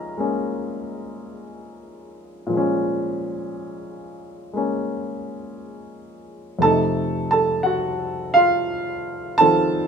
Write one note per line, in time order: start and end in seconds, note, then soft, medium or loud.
0.00 2.45 A#2 medium
0.00 2.48 F3 soft
0.00 0.16 G#3 soft
0.00 0.19 C#4 medium
0.00 1.15 A#4 medium
0.00 1.15 A#5 medium
0.17 2.51 G#3 soft
0.17 2.52 A#3 soft
0.17 2.52 C#4 soft
2.47 6.60 A#2 soft
2.47 6.61 F3 soft
2.53 4.52 G#3 soft
2.53 4.56 C#4 medium
4.53 6.62 G#3 soft
4.53 6.63 A#3 soft
4.53 6.64 C#4 soft
6.59 9.88 F2 soft
6.59 9.88 C3 soft
6.59 9.88 A3 soft
6.59 6.78 A5 medium
6.63 9.88 D#4 soft
6.63 6.79 A4 medium
7.31 7.64 A4 medium
7.31 7.67 A5 medium
7.63 7.82 F#4 medium
7.63 7.79 F#5 medium
8.34 9.37 F4 medium
8.34 9.43 F5 medium
9.38 9.88 D#3 soft
9.38 9.88 C4 soft
9.38 9.88 A4 medium
9.38 9.88 A5 loud
9.42 9.88 F3 soft